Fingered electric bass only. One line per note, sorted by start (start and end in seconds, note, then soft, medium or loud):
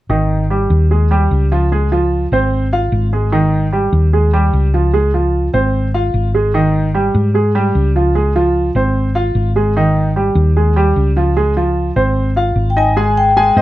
0.09 0.66 G#1 medium
0.70 1.27 D#2 medium
1.31 2.26 C#2 medium
2.32 2.88 G#1 medium
2.92 3.87 G#1 medium
3.93 4.49 D#2 medium
4.53 5.48 C#2 medium
5.54 6.10 G#1 medium
6.14 7.09 G#1 medium
7.15 7.71 G#2 medium
7.75 8.69 C#2 medium
8.75 9.31 G#1 medium
9.35 10.30 G#1 medium
10.35 10.92 D#2 medium
10.96 11.90 C#2 medium
11.96 12.52 G#1 medium
12.56 13.50 G#1 medium
13.57 13.62 G#2 medium